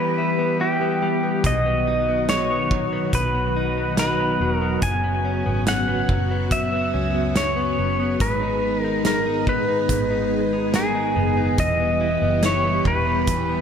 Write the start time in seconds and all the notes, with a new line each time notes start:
Already playing: E3 G3 B3 E4 G4 B4
0.18 E4
0.39 B3
0.60 E4 G4
0.81 B3
1.02 G3
1.23 B3
1.43 B1 B2 D#3 F#3 F#4 D#5, kick, closed hi-hat
1.66 B3
1.87 D#4
2.09 B3
2.29 D#4 C#5, snare, closed hi-hat
2.50 B3
2.71 F#3, kick
2.93 B3
3.13 B1 B2 B4, kick, closed hi-hat
3.35 B3
3.56 D#4
3.77 B3
3.97 D#4 B4, snare, closed hi-hat
4.20 B3
4.40 E1 F#3
4.53 A#4
4.62 B3
4.81 F#1 F#2 C#3 B3 F#4 G#5, kick, closed hi-hat
5.04 B3
5.25 C#4
5.46 G#1 B3
5.67 C#4 F#5, snare, closed hi-hat
5.88 B3
6.09 F#1 F#3, kick
6.31 B3
6.51 F#2 E5, kick, closed hi-hat
6.73 B3
6.94 C#2 C#4
7.14 B3
7.36 C#4 C#5, snare, closed hi-hat
7.56 B3
7.78 F#1 F#3
8.00 B3
8.20 G#1 G#2 D#3 G#3 G#4 B4, kick, closed hi-hat
8.42 D#4
8.80 D#4 A#4
9.05 A#4, snare, closed hi-hat
9.26 D#4
9.47 B3 B4, kick
9.68 D#4
9.89 G#1 G#2, kick, closed hi-hat
10.11 D#4
10.53 D#4
10.74 G#4 A#4, snare, closed hi-hat
10.95 D#4
11.16 F#1 B3
11.37 D#4
11.58 E1 E3 G3 G4 D#5, kick, closed hi-hat
11.80 B3
12.01 E4
12.22 F#1 B3
12.43 E4 C#5, snare, closed hi-hat
12.64 B3
12.85 E1 G3 B4, kick
13.07 B3
13.27 E3, kick, closed hi-hat
13.49 B3